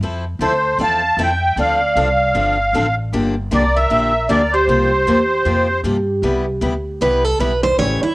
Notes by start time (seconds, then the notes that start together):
0.01 F2 F3 C4 E4 A4
0.39 D2 F3 C4 E4 A4 C5
0.78 E2 F3 C4 E4 A4 F5
0.83 A5
1.17 F2 F3 C4 E4 A4
1.21 E5 G5
1.56 D2 D3 F3 C4 D4 A4 D5
1.60 F5
1.96 C2 D3 F3 C4 D4 A4
2.35 G1 D3 F3 C4 D4 A4
2.73 A1 D3 F3 C4 D4 A4
3.13 G1 D3 F3 A#3 D4 G4
3.51 C2 D3 F3 A#3 D4 G4 A#4 D5
3.76 A#4 E5
3.90 A#1 D3 F3 A#3 D4 G4
4.29 D2 D3 F3 A#3 D4 G4 A#4 D5
4.53 G4 C5
4.67 C2 C3 F3 A#3 F4 G4
5.06 E2 C3 F3 A#3 F4 G4
5.45 F2 C3 F3 A#3 F4 G4
5.83 G2 C3 F3 A#3 F4 G4
6.22 C2 C3 G3 B3 E4 G4
6.61 D2 C3 G3 B3 E4 G4
7.01 C2 C3 G3 B3 E4 G4 B4
7.24 A4
7.39 B1 C3 G3 B3 E4 G4 B4
7.63 C5
7.78 A1 C#3 E3 A3 C#4 G4 C#5
8.02 E4, muted upright bass stroke